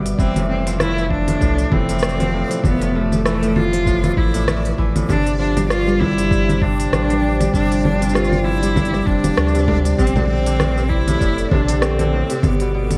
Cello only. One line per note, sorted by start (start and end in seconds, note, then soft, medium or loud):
0.19 0.47 C4 medium
0.49 0.78 C4 medium
0.80 1.09 E4 loud
1.11 1.75 D4 medium
1.73 2.65 C4 loud
2.65 2.97 B3 loud
2.95 3.26 A3 medium
3.26 3.58 A3 loud
3.56 4.18 F4 loud
4.17 4.78 E4 medium
5.10 5.38 D4 loud
5.38 5.67 D4 loud
5.69 6.00 F4 loud
5.99 6.63 E4 loud
6.62 7.52 D4 loud
7.53 7.82 D4 loud
7.83 8.15 D4 medium
8.14 8.46 F4 loud
8.44 9.08 E4 loud
9.06 9.97 D4 loud
9.98 10.27 C4 medium
10.29 10.91 C4 loud
10.89 11.50 E4 loud
11.51 11.83 D4 medium
11.82 12.44 C4 loud
12.43 12.98 B3 medium